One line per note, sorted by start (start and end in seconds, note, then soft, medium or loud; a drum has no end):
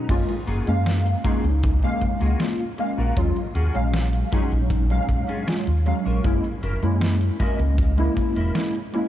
0.09 0.21 F#1 loud
0.09 0.30 G#3 loud
0.09 0.31 A#3 medium
0.09 0.31 C#4 medium
0.09 0.31 F4 loud
0.09 kick loud
0.09 closed hi-hat loud
0.09 crash loud
0.29 closed hi-hat soft
0.47 0.60 F#1 medium
0.47 0.67 A#3 medium
0.47 0.67 F4 medium
0.47 0.67 F#4 medium
0.47 0.68 G#4 medium
0.47 closed hi-hat medium
0.67 1.13 F#2 loud
0.67 1.20 G#3 medium
0.67 1.20 A#3 medium
0.67 1.20 C#4 medium
0.67 1.21 F5 loud
0.67 closed hi-hat soft
0.86 snare loud
0.86 closed hi-hat loud
1.06 closed hi-hat soft
1.24 1.77 G#3 medium
1.24 1.78 A#3 medium
1.24 1.44 A#3 medium
1.24 1.78 C#4 medium
1.24 1.78 D#4 medium
1.24 1.44 F4 medium
1.24 1.44 F#4 medium
1.24 1.45 G#4 loud
1.24 kick loud
1.24 closed hi-hat medium
1.44 1.90 C#2 loud
1.44 closed hi-hat soft
1.63 kick loud
1.63 closed hi-hat loud
1.82 2.35 G#3 medium
1.82 2.36 A#3 medium
1.82 2.36 C#4 medium
1.82 2.36 F5 loud
1.82 closed hi-hat soft
2.01 muted clean electric guitar stroke medium
2.01 kick medium
2.01 closed hi-hat medium
2.21 2.33 C#2 medium
2.21 2.40 A#3 medium
2.21 2.40 F4 medium
2.21 2.40 F#4 medium
2.21 2.40 G#4 medium
2.21 closed hi-hat soft
2.40 2.61 G#3 medium
2.40 2.61 A#3 medium
2.40 2.62 C#4 medium
2.40 2.62 F4 medium
2.40 snare loud
2.40 closed hi-hat medium
2.60 closed hi-hat soft
2.78 3.12 G#3 medium
2.78 3.13 A#3 medium
2.78 3.13 C#4 medium
2.78 3.13 F5 loud
2.78 muted clean electric guitar stroke medium
2.78 closed hi-hat soft
2.98 3.10 A#1 medium
2.98 3.17 A#3 medium
2.98 3.17 F4 medium
2.98 3.17 F#4 medium
2.98 3.17 A#4 medium
3.16 3.29 D#2 loud
3.16 3.38 F#3 loud
3.16 3.38 G#3 medium
3.16 3.39 C#4 medium
3.16 3.39 F4 loud
3.16 kick loud
3.16 closed hi-hat loud
3.36 closed hi-hat soft
3.55 3.67 D#2 medium
3.55 3.75 C#4 medium
3.55 3.75 F4 medium
3.55 3.75 F#4 medium
3.55 3.75 G#4 loud
3.55 closed hi-hat medium
3.74 4.21 A#1 loud
3.74 4.27 F#3 medium
3.74 4.28 G#3 medium
3.74 4.28 C#4 medium
3.74 4.28 F5 loud
3.74 closed hi-hat soft
3.94 snare loud
3.94 closed hi-hat loud
4.13 closed hi-hat soft
4.32 4.85 F#3 medium
4.32 4.86 G#3 medium
4.32 4.52 C#4 medium
4.32 4.86 C#4 medium
4.32 4.86 D#4 medium
4.32 4.52 F4 medium
4.32 4.52 F#4 medium
4.32 4.52 G#4 loud
4.32 kick loud
4.32 closed hi-hat medium
4.52 4.98 A#1 loud
4.52 closed hi-hat soft
4.70 kick loud
4.70 closed hi-hat loud
4.90 5.43 F#3 loud
4.90 5.43 G#3 medium
4.90 5.43 C#4 medium
4.90 5.44 F5 loud
4.90 closed hi-hat soft
5.09 5.21 A#1 medium
5.09 muted clean electric guitar stroke medium
5.09 kick medium
5.09 closed hi-hat medium
5.28 5.47 C#4 medium
5.28 5.48 F4 medium
5.28 5.48 F#4 medium
5.28 5.48 G#4 medium
5.28 closed hi-hat soft
5.47 5.69 F#3 medium
5.47 5.69 G#3 medium
5.47 5.69 C#4 medium
5.47 5.70 F4 medium
5.47 snare loud
5.47 closed hi-hat loud
5.67 5.90 D#2 medium
5.67 closed hi-hat soft
5.86 6.20 F#3 medium
5.86 6.20 G#3 medium
5.86 6.20 C#4 medium
5.86 6.21 F5 medium
5.86 muted clean electric guitar stroke loud
5.86 closed hi-hat soft
6.05 6.17 A#1 medium
6.05 6.25 C#4 medium
6.05 6.25 F4 medium
6.05 6.25 F#4 medium
6.05 6.25 A#4 medium
6.24 6.36 F#1 loud
6.24 6.46 G#3 loud
6.24 6.46 A#3 medium
6.24 6.46 C#4 medium
6.24 6.47 E4 loud
6.24 kick loud
6.24 closed hi-hat loud
6.44 closed hi-hat soft
6.63 6.75 F#1 medium
6.63 6.83 C#4 medium
6.63 6.83 E4 medium
6.63 6.83 F#4 medium
6.63 6.83 A#4 loud
6.63 closed hi-hat medium
6.82 7.28 F#2 loud
6.82 7.35 G#3 medium
6.82 7.35 A#3 medium
6.82 7.36 C#4 medium
6.82 7.36 E4 loud
6.82 closed hi-hat soft
7.01 snare loud
7.01 closed hi-hat medium
7.21 closed hi-hat soft
7.39 7.93 G#3 medium
7.39 7.93 A#3 medium
7.39 7.59 C#4 medium
7.39 7.94 C#4 medium
7.39 7.60 E4 medium
7.39 7.60 F#4 medium
7.39 7.60 A#4 medium
7.39 7.94 D#5 loud
7.39 kick loud
7.39 closed hi-hat medium
7.59 8.05 C#2 loud
7.59 closed hi-hat soft
7.78 kick loud
7.78 closed hi-hat loud
7.97 8.50 G#3 medium
7.97 8.51 A#3 medium
7.97 8.51 C#4 medium
7.97 8.51 E4 loud
7.97 closed hi-hat soft
8.17 muted clean electric guitar stroke medium
8.17 kick medium
8.17 closed hi-hat medium
8.36 8.48 E1 medium
8.36 8.55 C#4 medium
8.36 8.55 E4 medium
8.36 8.56 F#4 medium
8.36 8.56 A#4 medium
8.36 closed hi-hat soft
8.55 8.76 G#3 medium
8.55 8.77 A#3 medium
8.55 8.77 C#4 medium
8.55 8.77 E4 medium
8.55 snare loud
8.55 closed hi-hat medium
8.75 closed hi-hat soft
8.93 9.08 G#3 medium
8.93 9.08 A#3 medium
8.93 9.08 C#4 medium
8.93 9.08 E4 medium
8.93 muted clean electric guitar stroke medium
8.93 closed hi-hat soft